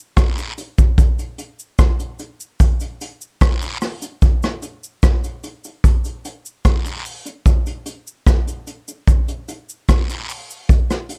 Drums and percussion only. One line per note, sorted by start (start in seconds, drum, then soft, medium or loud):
0.16 kick loud
0.16 cross-stick loud
0.16 closed hi-hat medium
0.16 cabasa medium
0.16 long guiro medium
0.38 closed hi-hat medium
0.38 cabasa medium
0.58 closed hi-hat medium
0.58 cabasa medium
0.78 kick loud
0.78 closed hi-hat soft
0.78 cabasa medium
0.98 kick loud
0.98 closed hi-hat medium
0.98 cabasa medium
1.19 closed hi-hat medium
1.19 cabasa soft
1.38 closed hi-hat medium
1.38 cabasa medium
1.59 cabasa medium
1.79 kick loud
1.79 cross-stick loud
1.79 closed hi-hat medium
1.79 cabasa medium
2.00 closed hi-hat soft
2.00 cabasa medium
2.19 closed hi-hat medium
2.19 cabasa medium
2.40 cabasa medium
2.60 kick loud
2.60 closed hi-hat loud
2.60 cabasa medium
2.80 closed hi-hat medium
2.80 cabasa soft
3.01 closed hi-hat medium
3.01 cabasa medium
3.21 cabasa medium
3.41 kick loud
3.41 cross-stick loud
3.41 closed hi-hat medium
3.41 cabasa medium
3.41 long guiro medium
3.62 closed hi-hat medium
3.62 cabasa medium
3.81 cross-stick medium
3.81 open hi-hat medium
3.81 cabasa medium
4.02 closed hi-hat soft
4.02 cabasa medium
4.22 kick loud
4.22 closed hi-hat medium
4.22 cabasa medium
4.43 cross-stick medium
4.43 closed hi-hat medium
4.43 cabasa soft
4.62 closed hi-hat medium
4.62 cabasa medium
4.84 cabasa medium
5.03 kick loud
5.03 cross-stick loud
5.03 closed hi-hat medium
5.03 cabasa medium
5.24 closed hi-hat medium
5.24 cabasa medium
5.44 closed hi-hat medium
5.44 cabasa medium
5.64 closed hi-hat soft
5.64 cabasa medium
5.84 kick loud
5.84 closed hi-hat loud
5.84 cabasa medium
6.04 closed hi-hat medium
6.04 cabasa soft
6.25 closed hi-hat medium
6.25 cabasa soft
6.45 cabasa medium
6.65 kick loud
6.65 cross-stick loud
6.65 closed hi-hat medium
6.65 cabasa medium
6.65 long guiro medium
6.86 closed hi-hat medium
6.86 cabasa medium
7.05 open hi-hat medium
7.05 cabasa medium
7.26 closed hi-hat soft
7.26 cabasa medium
7.46 kick loud
7.46 closed hi-hat medium
7.46 cabasa medium
7.66 closed hi-hat medium
7.66 cabasa soft
7.86 closed hi-hat medium
7.86 cabasa medium
8.07 cabasa medium
8.27 kick loud
8.27 cross-stick loud
8.27 closed hi-hat medium
8.27 cabasa medium
8.47 closed hi-hat medium
8.47 cabasa medium
8.67 closed hi-hat medium
8.67 cabasa medium
8.88 closed hi-hat soft
8.88 cabasa medium
9.07 kick loud
9.07 closed hi-hat medium
9.07 cabasa medium
9.28 closed hi-hat medium
9.28 cabasa soft
9.48 closed hi-hat medium
9.48 cabasa soft
9.69 cabasa medium
9.89 kick loud
9.89 cross-stick loud
9.89 closed hi-hat medium
9.89 cabasa medium
9.89 long guiro medium
10.10 closed hi-hat medium
10.10 cabasa soft
10.29 open hi-hat medium
10.29 cabasa medium
10.50 cabasa medium
10.69 kick loud
10.69 closed hi-hat medium
10.69 cabasa medium
10.90 cross-stick medium
10.90 closed hi-hat medium
10.90 cabasa soft
11.09 closed hi-hat medium
11.09 cabasa medium